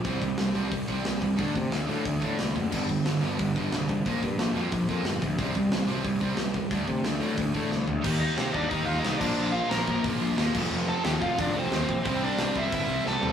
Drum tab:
CC |--------|--------|x-------|--------|
HH |oooooooo|oooooooo|-ooooooo|oooooooo|
SD |--o---o-|--o---o-|--o---o-|--o---o-|
FT |--------|--------|--------|--------|
BD |oo--oo-o|oo--oo-o|oo--oo-o|oo--oo-o|

CC |--------|--------|x------x|-------x|
HH |oooooooo|oooooo--|--o-o-o-|--o-o-o-|
SD |--o---o-|--o---o-|--o---o-|--o---o-|
FT |--------|-------o|--------|--------|
BD |oo--oo-o|oo--oo--|o--oo--o|---oo--o|

CC |--------|--------|
HH |--o-o-o-|o-o-o---|
SD |--o---o-|--o---o-|
FT |--------|-------o|
BD |---oo--o|o--oo---|